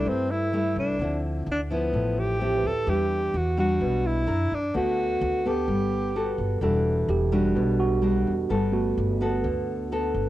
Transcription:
Already playing: G3 A3 D4 E4 A4
0.05 G2 C4
0.31 E4
0.53 G3 A3 E4
0.76 C2 D4
0.99 D2 D3 F3 C4 E4
1.46 D2
1.51 D4
1.70 F3 B3 E4
1.93 A1 A2
2.19 G4
2.40 F3 C4 E4 G4
2.58 B4
2.63 D2 A4
2.87 E2 E3 G3 D4 G4
3.34 E2 F#4
3.58 G3 D4 F#4
3.81 B1 B2
4.06 E4
4.26 F#2 D4 E4 A#4
4.52 F#2 D4
4.74 D2 D3 A3 B3 F#4
5.21 D2
5.45 B3 G4 A4
5.68 G1 G3
6.16 B3 F#4 A4
6.38 G1
6.61 E1 E3 G3 D4 F#4 A4
7.08 E1 G4
7.32 G3 D4 F#4
7.55 B1 B2
7.80 F#4
8.02 G3 D4 F#4
8.27 E1
8.49 G1 G3 B3 F#4 A4
8.72 A3 B3 F#4
8.98 G1
9.21 B3 F#4 A4
9.44 D2 D3
9.92 B3 F#4 A4
10.14 G1

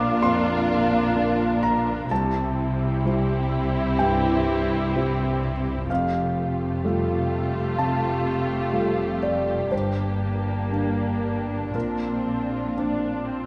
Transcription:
Already playing: A#1 A#2 A#3 D4 F4 A#4 A#5 D6
0.22 F2 C6
1.16 A#3 D4 F4
1.63 A#5
2.10 C2 C3 G3 C4 E4 G4 A5
3.05 G3 C4 E4
3.99 G2 G5
4.95 G3 C4 E4
5.89 F1 F2 A3 F4 G4 F5
6.84 G3 A3 F4
7.79 C3 A5
8.73 G3 A3 F4
9.23 D5
9.71 G1 G2 A#3 D4 C5
10.72 A#3 D4
11.73 A#1 A#2 C4 F4 A#4
12.77 C4 D4
13.28 C4

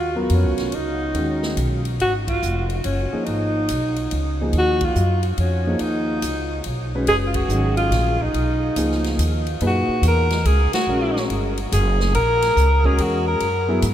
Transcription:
Already playing: D#2 F4
0.15 F#3 B3 F4 A#4
0.30 F2, ride
0.34 C#4
0.46 C#2
0.58 B1, snare, ride
0.72 C#2 D#4, ride
1.14 D#2 D#3 G#3 C#4 F#4, ride
1.43 snare
1.56 B1, hi-hat pedal, ride
1.85 ride
2.00 G#1 F#4, ride
2.28 F4, kick, ride
2.42 F1, hi-hat pedal
2.70 ride
2.84 F#1 C#4, ride
3.12 F3 A#3 D#4 G#4, muted upright bass stroke
3.25 G#1 D#4, ride
3.69 B1, hi-hat pedal, ride
3.96 ride
4.11 C#2, ride
4.41 F3 A#3 D#4 G#4
4.53 D#2, ride
4.58 F#4
4.81 F4, kick, ride
4.95 F#2, hi-hat pedal
5.23 ride
5.38 F2 C#4, ride
5.67 F3 A#3 D#4 G#4
5.79 D#2 D#4, ride
6.22 C#2, hi-hat pedal, ride
6.64 B1, ride
6.95 G#3 C#4 F#4 B4
7.07 F#1 G#4, ride
7.26 F4
7.34 F#4, kick, ride
7.49 G#1 D#3 F#3 G#3 C#4, hi-hat pedal
7.77 F4, ride
7.90 A#1, snare, ride
8.20 D#4, kick
8.34 B1, ride
8.76 C#2 F3 A#3 D#4 G#4, hi-hat pedal, ride
8.92 snare
9.04 snare, ride
9.18 D#2, hi-hat pedal, ride
9.47 ride
9.61 F#2 A#2 D#4 G#4 B4, ride
9.67 F#4
9.88 muted upright bass stroke
10.02 E2, hi-hat pedal, ride
10.07 A#4
10.30 snare, ride
10.45 C#2 G#4, ride
10.73 F#4, snare, ride
10.87 A#1 G#3 C#4 F#4 A#4
11.16 snare
11.30 G1, ride
11.57 ride
11.72 F#1 G#4, hi-hat pedal, ride
12.00 snare
12.15 A#1 A#4, ride
12.42 snare, ride
12.56 C#2, hi-hat pedal
12.84 G#3 C#4 F#4 G#4 A#4, kick
12.98 E2 F#4, ride
13.28 A#4
13.40 F#2, ride
13.68 F#3 B3 E4 G#4
13.82 G#2, hi-hat pedal, ride

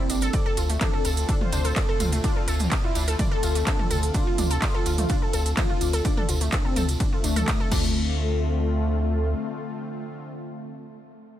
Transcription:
Already playing: C3 G3 A#3 C4 E4
0.10 G1 D4, closed hi-hat, tambourine
0.21 A4, closed hi-hat, tambourine
0.33 D3 A3 C4 F4 A4 D5, kick, closed hi-hat, ride, tambourine
0.46 A4
0.57 D2 F4, closed hi-hat, tambourine
0.70 A3, closed hi-hat, tambourine
0.81 D4 A4, kick, clap, closed hi-hat, mid tom, ride, tambourine
0.93 A4
1.05 D2 A4, closed hi-hat, tambourine
1.17 A4, closed hi-hat, tambourine
1.29 D4, kick, closed hi-hat, ride, tambourine
1.41 F4 C5, mid tom
1.53 D2 D4, closed hi-hat, tambourine
1.64 A4, closed hi-hat, tambourine
1.76 A4 D5, kick, clap, closed hi-hat, ride, tambourine
1.89 A4
2.00 D2 F4, closed hi-hat, mid tom, tambourine
2.12 A3, closed hi-hat, tambourine
2.24 D4 F4, kick, closed hi-hat, ride, tambourine
2.36 A4
2.48 D2 A4, closed hi-hat, tambourine
2.59 closed hi-hat, mid tom, tambourine
2.72 D4, kick, clap, closed hi-hat, ride, tambourine
2.84 E4 F4
2.95 D2 D4, closed hi-hat, tambourine
3.08 A4, closed hi-hat, tambourine
3.19 D5, kick, closed hi-hat, mid tom, ride, tambourine
3.31 A4
3.43 D2 F4, closed hi-hat, tambourine
3.55 A3, closed hi-hat, tambourine
3.67 D4, kick, clap, closed hi-hat, ride
3.79 A4, mid tom
3.91 D2 A4, closed hi-hat, tambourine
4.03 closed hi-hat, tambourine
4.14 D4 F4, kick, closed hi-hat, ride, tambourine
4.27 F4
4.38 D2 D4, closed hi-hat, mid tom, tambourine
4.50 A4, closed hi-hat, tambourine
4.62 F4 D5, kick, clap, closed hi-hat, ride, tambourine
4.74 A4
4.86 D2 F4, closed hi-hat, tambourine
4.98 A3 F4, closed hi-hat, mid tom, tambourine
5.09 D4, kick, closed hi-hat, ride, tambourine
5.22 A4
5.33 D2 A4, closed hi-hat, tambourine
5.46 closed hi-hat, tambourine
5.57 D4 F4, kick, clap, closed hi-hat, mid tom, ride, tambourine
5.70 F4
5.81 D2 D4, closed hi-hat, tambourine
5.93 A4, closed hi-hat, tambourine
6.05 D4 D5, kick, closed hi-hat, ride, tambourine
6.17 A4, mid tom
6.29 D2 F4, closed hi-hat, tambourine
6.40 A3, closed hi-hat, tambourine
6.52 D4, kick, clap, closed hi-hat, ride, tambourine
6.65 C4 A4
6.76 D2 A4, closed hi-hat, mid tom, tambourine
6.89 closed hi-hat, tambourine
7.00 D4, kick, closed hi-hat, ride, tambourine
7.12 A3 F4
7.24 D2 D4, closed hi-hat, tambourine
7.36 A4, closed hi-hat, mid tom, tambourine
7.48 D5, kick, clap, closed hi-hat, ride, tambourine
7.60 A4
7.71 D2 D3 A3 C4 D4 F4, kick, crash, tambourine
7.83 tambourine

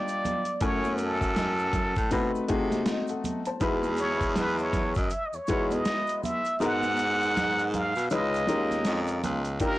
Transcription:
Already playing: G3 D4 D#4 F4 G4 D5
0.08 closed hi-hat, maracas
0.25 closed hi-hat, high conga, low conga, maracas
0.45 closed hi-hat, maracas
0.61 F#2 A3 C#4 E4 F#4 C#5 G#5, kick, closed hi-hat, maracas
0.85 high conga, maracas
0.98 A4, closed hi-hat, maracas
1.21 kick, closed hi-hat, maracas
1.36 snare, closed hi-hat, low conga, maracas
1.59 maracas
1.73 kick, closed hi-hat, low conga, maracas
1.96 A2, kick, closed hi-hat, maracas
2.11 B2 A3 C4 D#4 F#4 B4, kick, closed hi-hat, maracas
2.34 C3, maracas
2.48 C3 A3 C4 D#4 F#4 G#4, kick, closed hi-hat, maracas
2.71 snare, closed hi-hat, high conga, maracas
2.86 F#4 D#5, snare, closed hi-hat, maracas
3.07 A4 F#5, closed hi-hat, maracas
3.24 closed hi-hat, high conga, low conga, maracas
3.45 C5 A5, closed hi-hat, maracas
3.61 E2 G#3 D#4 E4 F#4 B4, kick, closed hi-hat, maracas
3.83 high conga, maracas
3.97 C#5, closed hi-hat, maracas
4.21 kick, closed hi-hat, maracas
4.36 B4, snare, closed hi-hat, low conga, maracas
4.58 C#5, maracas
4.73 kick, closed hi-hat, low conga, maracas
4.95 F#2, kick, closed hi-hat, maracas
4.99 D#5
5.10 E5, closed hi-hat, maracas
5.26 D#5
5.33 E2 C#5, maracas
5.47 E2 G#3 D#4 E4 F#4 B4, kick, closed hi-hat, maracas
5.71 D#5, closed hi-hat, high conga, maracas
5.85 snare, closed hi-hat, maracas
6.07 closed hi-hat, maracas
6.24 E5, closed hi-hat, high conga, low conga, maracas
6.45 closed hi-hat, maracas
6.60 G#2 G#3 B3 D#4 F#4 A#4 F#5, closed hi-hat, maracas
6.83 closed hi-hat, high conga, maracas
6.96 closed hi-hat, maracas
7.21 closed hi-hat, maracas
7.37 snare, closed hi-hat, low conga, maracas
7.58 closed hi-hat, maracas
7.74 F5, closed hi-hat, low conga, maracas
7.95 B2, closed hi-hat, maracas
8.10 C#2 G#3 C#4 D#4 F4 B4 D#5, closed hi-hat, maracas
8.34 closed hi-hat, maracas
8.47 D#2 G#3 C#4 D#4 F4 A#4, closed hi-hat, maracas
8.71 snare, closed hi-hat, high conga, maracas
8.85 F2, snare, closed hi-hat, maracas
9.07 closed hi-hat, maracas
9.23 C#2, closed hi-hat, high conga, low conga, maracas
9.45 closed hi-hat, maracas
9.60 D#2 A#3 D4 D#4 F4 G4 A#4, kick, closed hi-hat, maracas

